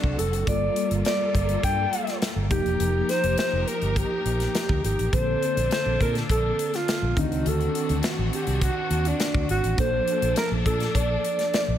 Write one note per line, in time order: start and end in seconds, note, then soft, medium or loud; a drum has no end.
0.00 0.14 C2 medium
0.00 0.44 D3 medium
0.00 0.13 F#3 medium
0.00 0.14 C4 medium
0.00 0.44 C4 medium
0.00 0.14 D4 medium
0.00 0.20 D4 medium
0.00 0.44 F#4 medium
0.00 0.14 A4 medium
0.00 0.43 A4 medium
0.00 kick medium
0.18 0.33 F1 medium
0.18 0.47 A4 medium
0.18 closed hi-hat medium
0.33 0.43 F#1 medium
0.33 closed hi-hat soft
0.47 0.68 G1 medium
0.47 2.47 G3 medium
0.47 2.49 G3 medium
0.47 2.47 A#3 medium
0.47 2.49 A#3 medium
0.47 2.49 F4 medium
0.47 2.48 F4 soft
0.47 2.49 A4 medium
0.47 2.48 A4 medium
0.47 0.90 D5 medium
0.47 kick medium
0.47 closed hi-hat medium
0.76 closed hi-hat medium
0.91 1.01 G1 medium
0.91 closed hi-hat soft
1.05 1.33 D5 medium
1.05 snare loud
1.05 closed hi-hat medium
1.35 1.55 G1 medium
1.35 1.62 D5 medium
1.35 kick medium
1.35 closed hi-hat medium
1.49 closed hi-hat soft
1.63 1.84 G2 medium
1.63 2.20 G5 medium
1.63 kick medium
1.63 closed hi-hat medium
1.93 closed hi-hat medium
2.07 snare soft
2.07 closed hi-hat soft
2.22 snare medium
2.22 closed hi-hat medium
2.36 2.51 G1 medium
2.49 2.61 F1 medium
2.49 4.79 F3 medium
2.49 5.10 F3 medium
2.49 4.79 A#3 medium
2.49 4.80 D#4 medium
2.49 5.10 D#4 medium
2.49 3.11 G4 medium
2.49 5.10 G4 medium
2.49 4.80 G4 medium
2.49 5.10 A#4 medium
2.49 kick medium
2.49 closed hi-hat medium
2.66 2.76 E1 medium
2.66 closed hi-hat soft
2.80 3.01 F1 medium
2.80 closed hi-hat medium
3.09 3.39 C5 medium
3.09 snare soft
3.09 closed hi-hat medium
3.24 3.34 F1 medium
3.24 closed hi-hat soft
3.38 3.69 C5 medium
3.38 snare loud
3.38 closed hi-hat medium
3.53 3.63 F1 medium
3.68 3.99 A#4 medium
3.68 closed hi-hat medium
3.82 4.02 G1 medium
3.82 closed hi-hat soft
3.96 4.84 G4 medium
3.96 kick medium
3.96 closed hi-hat medium
4.25 4.46 A#1 medium
4.25 closed hi-hat medium
4.40 snare soft
4.40 closed hi-hat soft
4.55 snare medium
4.55 closed hi-hat medium
4.69 4.80 D2 medium
4.69 kick medium
4.84 4.94 G#1 medium
4.84 5.15 G4 medium
4.84 closed hi-hat medium
4.99 5.09 A1 medium
4.99 closed hi-hat soft
5.12 5.34 A#1 medium
5.12 7.12 D3 medium
5.12 7.14 A#3 medium
5.12 7.13 A#3 soft
5.12 7.13 C4 soft
5.12 7.14 D4 medium
5.12 7.14 A4 medium
5.12 5.71 C5 medium
5.12 kick medium
5.12 closed hi-hat medium
5.43 closed hi-hat medium
5.57 5.67 A#1 medium
5.57 closed hi-hat medium
5.71 5.99 C5 medium
5.71 snare loud
5.71 closed hi-hat medium
5.86 5.96 A#1 medium
6.01 6.21 A#2 medium
6.01 6.15 A#4 medium
6.01 kick medium
6.01 closed hi-hat medium
6.15 snare soft
6.15 closed hi-hat soft
6.29 6.50 A#1 medium
6.29 6.77 A4 medium
6.29 kick medium
6.29 closed hi-hat medium
6.59 closed hi-hat medium
6.74 7.21 F4 medium
6.74 snare soft
6.74 closed hi-hat soft
6.88 snare medium
6.88 closed hi-hat medium
7.02 7.12 A#1 medium
7.16 7.27 D2 medium
7.16 9.45 D#3 medium
7.16 9.76 D#3 medium
7.16 9.45 C4 medium
7.16 9.76 C4 medium
7.16 9.76 D4 medium
7.16 9.46 D4 medium
7.16 7.24 D#4 medium
7.16 7.50 D#4 medium
7.16 9.76 F#4 medium
7.16 kick medium
7.16 closed hi-hat medium
7.24 9.49 F#4 medium
7.31 7.41 C#2 medium
7.31 closed hi-hat soft
7.46 7.66 D2 medium
7.46 8.07 A4 medium
7.46 closed hi-hat medium
7.60 closed hi-hat soft
7.75 closed hi-hat medium
7.89 8.00 D2 medium
7.89 closed hi-hat soft
8.03 snare loud
8.03 closed hi-hat medium
8.18 8.29 A1 medium
8.33 8.65 G4 medium
8.33 closed hi-hat medium
8.47 8.68 C2 medium
8.47 closed hi-hat soft
8.62 9.09 F#4 medium
8.62 kick medium
8.62 closed hi-hat medium
8.90 9.11 D#2 medium
8.90 closed hi-hat medium
9.05 9.50 D4 medium
9.05 closed hi-hat soft
9.20 snare medium
9.20 closed hi-hat medium
9.35 9.45 D2 medium
9.35 kick medium
9.49 9.59 G#1 medium
9.49 9.77 F#4 medium
9.49 closed hi-hat medium
9.63 9.74 A1 medium
9.63 closed hi-hat soft
9.77 9.99 A#1 medium
9.77 11.77 F3 medium
9.77 11.78 A#3 medium
9.77 11.78 D4 medium
9.77 11.78 A4 medium
9.77 10.33 C5 medium
9.77 kick loud
9.77 closed hi-hat medium
10.08 closed hi-hat medium
10.22 10.32 A#1 medium
10.22 closed hi-hat medium
10.36 10.51 A#4 medium
10.36 snare loud
10.36 closed hi-hat medium
10.51 10.62 A#1 medium
10.66 10.86 A#2 medium
10.66 10.97 A4 medium
10.66 kick medium
10.66 closed hi-hat medium
10.80 snare soft
10.80 closed hi-hat soft
10.95 11.16 A#1 medium
10.95 11.78 D5 medium
10.95 kick medium
10.95 closed hi-hat medium
11.24 closed hi-hat medium
11.39 snare soft
11.39 closed hi-hat medium
11.54 snare loud
11.54 closed hi-hat medium
11.68 11.78 A#1 medium